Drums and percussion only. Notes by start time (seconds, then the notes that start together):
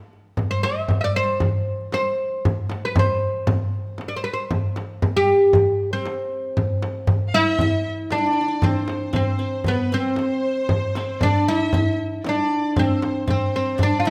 0.00 darbuka ka
0.13 darbuka ka
0.37 frame drum, darbuka dum
0.64 darbuka tek, frame drum
0.88 frame drum, darbuka dum
1.16 darbuka ka
1.40 frame drum, darbuka dum
1.68 darbuka ka
1.81 darbuka ka
1.92 darbuka tek, frame drum
2.07 darbuka ka
2.20 darbuka ka
2.45 darbuka dum, frame drum
2.70 darbuka tek, frame drum
2.96 frame drum, darbuka dum
3.23 darbuka ka
3.47 frame drum, darbuka dum
3.75 darbuka ka
3.88 darbuka ka
3.98 darbuka tek, frame drum
4.15 darbuka ka
4.51 frame drum, darbuka dum
4.76 darbuka tek, frame drum
5.02 frame drum, darbuka dum
5.29 darbuka ka
5.53 frame drum, darbuka dum
5.68 darbuka ka
6.05 darbuka tek, frame drum
6.20 darbuka ka
6.32 darbuka ka
6.57 frame drum, darbuka dum
6.82 darbuka tek, frame drum
7.07 frame drum, darbuka dum
7.59 frame drum, darbuka dum
7.85 darbuka ka
7.99 darbuka ka
8.11 darbuka tek, frame drum
8.38 darbuka ka
8.62 frame drum, darbuka dum
8.88 darbuka tek, frame drum
9.13 frame drum, darbuka dum
9.42 darbuka ka
9.55 darbuka ka
9.64 frame drum, darbuka dum
10.07 darbuka ka
10.16 darbuka tek, frame drum
10.46 darbuka ka
10.69 frame drum, darbuka dum
10.95 darbuka tek, frame drum
11.21 frame drum, darbuka dum
11.62 darbuka ka
11.73 frame drum, darbuka dum
12.01 darbuka ka
12.13 darbuka ka
12.24 darbuka tek, frame drum
12.52 darbuka ka
12.76 frame drum, darbuka dum
13.02 darbuka tek, frame drum
13.28 frame drum, darbuka dum
13.67 darbuka ka
13.79 frame drum, darbuka dum
13.92 darbuka ka